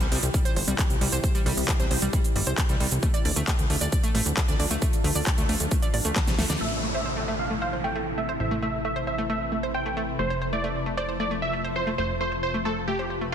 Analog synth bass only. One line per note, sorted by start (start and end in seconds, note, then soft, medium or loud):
0.00 0.07 C2 medium
0.12 0.18 C2 medium
0.23 0.30 C2 medium
0.56 0.63 G1 medium
0.67 0.74 C2 medium
0.90 0.97 C2 medium
1.01 1.08 C2 loud
1.12 1.19 C2 medium
1.46 1.53 C2 loud
1.57 1.64 C2 medium
1.80 1.86 C2 medium
1.91 1.98 C2 loud
2.02 2.09 C2 medium
2.35 2.42 G1 loud
2.47 2.54 C2 medium
2.69 2.76 C2 medium
2.80 2.87 C2 loud
2.92 2.98 C2 medium
3.25 3.32 D2 medium
3.36 3.43 D2 medium
3.59 3.66 D2 medium
3.70 3.77 D2 medium
3.81 3.88 D2 medium
4.15 4.22 A1 loud
4.26 4.33 D2 medium
4.48 4.55 D2 medium
4.59 4.66 D2 medium
4.71 4.77 D2 medium
5.04 5.11 D2 loud
5.15 5.22 D2 medium
5.38 5.45 D2 medium
5.49 5.56 D2 medium
5.60 5.67 D2 medium
5.94 6.01 A1 medium
6.05 6.12 D2 medium
6.27 6.34 C2 medium
6.39 6.45 D2 loud
6.50 6.57 D2 medium
6.61 8.38 A1 medium
8.40 10.17 A1 medium
10.19 11.96 F1 medium
11.98 13.35 F1 medium